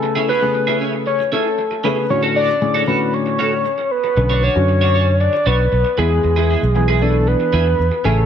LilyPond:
<<
  \new Staff \with { instrumentName = "Soft synth lead" } { \time 4/4 \key e \mixolydian \tempo 4 = 116 a'8 b'4 r8 cis''8 a'4 b'8 | cis''8 d''4 b'8 cis''4. b'8~ | b'8 cis''4. d''8 b'4 gis'8~ | gis'4 gis'8 a'8 b'4. a'8 | }
  \new Staff \with { instrumentName = "Clean electric guitar" } { \time 4/4 \key e \mixolydian r16 <cis' e' gis'>16 <cis' e' gis'>16 r8 <cis' e' gis'>16 <cis' e' gis'>16 r8. <cis' e' gis'>16 r8. <cis' e' gis'>16 r16 | r16 <cis' fis' a'>16 <cis' fis' a'>16 r8 <cis' fis' a'>16 <cis' fis' a'>16 r8. <cis' fis' a'>16 r4 r16 | r16 <d' fis' cis''>16 <d' fis' cis''>16 r8 <d' fis' cis''>16 <d' fis' cis''>16 r8. <d' fis' cis''>16 r8. <b e' gis'>16 r16 | r16 <b e' gis'>16 <b e' gis'>16 r8 <b e' gis'>16 <b e' gis'>16 r8. <b e' gis'>16 r8. <cis' e' gis'>16 r16 | }
  \new Staff \with { instrumentName = "Grand piano" } { \time 4/4 \key e \mixolydian <cis a gis''>8 r16 <cis a gis'>4. r4 r16 <cis a gis'>16 r16 | <a, d cis' fis'>8. r16 <a, d cis' gis'>16 r16 <a, d cis' fis'>4. r4 | <d cis' b'>8 r16 <d cis' fis'>4. r4 r16 <e b gis'>8~ | <e b gis'>8. r16 <e b gis'>16 r16 <e b d'>4. r8 <cis a gis''>8 | }
  \new Staff \with { instrumentName = "Fingered electric bass" } { \clef bass \time 4/4 \key e \mixolydian r1 | r1 | b,,8. fis,4.~ fis,16 b,,8 b,,16 r16 e,8 | e,8. b,,4.~ b,,16 e,8 e,16 r16 a,,8 | }
>>